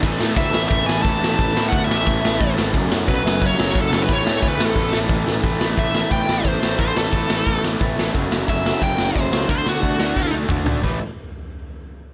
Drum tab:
CC |x-------|--------|--------|--------|
RD |--x-x-x-|x-x-x-x-|x-x-x-x-|x-x-x-x-|
HH |--------|--------|--------|--------|
SD |-o-o-o-o|-o-o-o-o|-o-o-o-o|-o-o-o-o|
T2 |--------|--------|--------|--------|
FT |--------|--------|--------|--------|
BD |o-o-o-o-|o-o-o-o-|o-o-o-o-|o-o-o-o-|

CC |--------|--------|--------|--------|
RD |--------|--------|--------|--------|
HH |o-o-o-o-|o-o-o-o-|o-o-o-o-|o-o-----|
SD |-o-o-o-o|-o-o-o-o|-o-o-o-o|-o-oo---|
T2 |--------|--------|--------|------o-|
FT |--------|--------|--------|-------o|
BD |o-o-o-o-|o-o-o-o-|o-o-o-o-|o-o-o-o-|

CC |x-------|
RD |--------|
HH |--------|
SD |--------|
T2 |--------|
FT |--------|
BD |o-------|